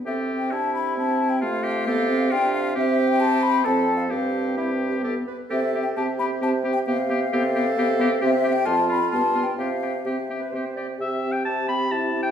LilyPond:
<<
  \new Staff \with { instrumentName = "Flute" } { \time 3/4 \key c \major \tempo 4 = 132 \tuplet 3/2 { e''4 g''8 } a''8 b''8 \tuplet 3/2 { a''4 g''8 } | f''2 g''8 f''8 | \tuplet 3/2 { e''4 g''8 } a''8 b''8 \tuplet 3/2 { a''4 f''8 } | f''4 e''4 r4 |
\tuplet 3/2 { e''4 g''8 } a''8 b''8 \tuplet 3/2 { a''4 g''8 } | f''2. | \tuplet 3/2 { e''4 g''8 } a''8 b''8 \tuplet 3/2 { a''4 g''8 } | f''4 e''4. r8 |
r8 g'4 g'4 g'8 | }
  \new Staff \with { instrumentName = "Clarinet" } { \time 3/4 \key c \major a'4 g'2 | f'4 a'4 g'4 | g'4 c''4 a'4 | g'4 \tuplet 3/2 { e'4 g'8 } a'8 b'8 |
a'4 g'2~ | g'4 a'2 | g'4 f'2 | g'4 \tuplet 3/2 { g'4 b'8 } c''8 d''8 |
r8 c'4 c'4 c'8 | }
  \new Staff \with { instrumentName = "Oboe" } { \time 3/4 \key c \major g'4 e'2 | f'8 g'8 g'4 f'4 | g'2 a'4 | g'4 g'4 g'8 r8 |
g'8 g'8 g'8 g'8 g'8 g'8 | g'8 g'8 g'8 g'8 g'8 g'8 | g'8 g'8 f'8 f'8 f'8 f'8 | g'8 g'8 g'8 g'8 g'8 g'8 |
\tuplet 3/2 { e''4 g''8 } a''8 b''8 \tuplet 3/2 { a''4 g''8 } | }
  \new Staff \with { instrumentName = "French horn" } { \time 3/4 \key c \major c'4 d'4 c'4 | a4 b8 c'8 d'4 | c'2 c'4 | c'4 c'4 b8 r8 |
c'8 c'8 c'8 c'8 c'8 c'8 | b8 b8 b8 b8 b8 b8 | c'8 c'8 c'8 c'8 b8 b8 | c'8 c'8 c'8 c'8 c'8 c'8 |
g'2 e'4 | }
  \new Staff \with { instrumentName = "Bassoon" } { \clef bass \time 3/4 \key c \major c2.~ | c2. | c2 f,4 | g,2~ g,8 r8 |
c4 c4 c4 | c4 c4 c4 | c4 f,4 g,4 | c4 c4 c4 |
c4 c4 c4 | }
>>